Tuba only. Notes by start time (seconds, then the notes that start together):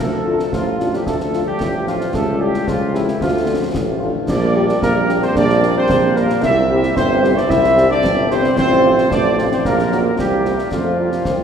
0.00 D2
0.52 A1
1.06 D2
1.60 A1
2.14 C#2
2.67 C#2
3.20 D2
3.74 A1
4.28 A#1
4.81 A#1
5.35 A#1
5.89 A#1
6.42 C2
6.96 G1
7.50 C2
8.04 G1
8.57 A1
9.11 A1
9.65 A#1
10.18 C2
10.72 F2
11.26 C2